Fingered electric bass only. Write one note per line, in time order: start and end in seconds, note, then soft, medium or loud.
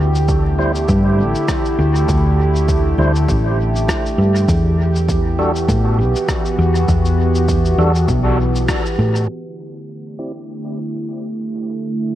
0.00 0.86 D2 loud
0.89 1.20 G2 loud
1.19 1.34 A1 medium
1.79 2.05 D2 medium
2.08 2.96 D2 loud
2.98 3.25 D2 medium
3.28 3.86 A1 medium
4.18 4.45 G2 medium
4.48 5.66 E2 loud
5.68 6.00 A2 loud
5.98 6.13 B1 medium
6.59 6.85 E2 medium
6.88 7.76 E2 loud
7.78 8.05 E2 medium
8.08 8.66 B1 medium
8.99 9.25 A2 medium